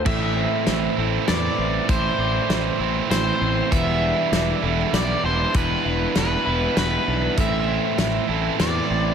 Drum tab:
CC |x-----|------|------|------|
HH |--x-x-|x-x-x-|x-x-x-|x-x-x-|
SD |--o-o-|--o-o-|--o-o-|--o-o-|
BD |o-----|o-----|o-----|o-----|

CC |------|
HH |x-x-x-|
SD |--o-o-|
BD |o-----|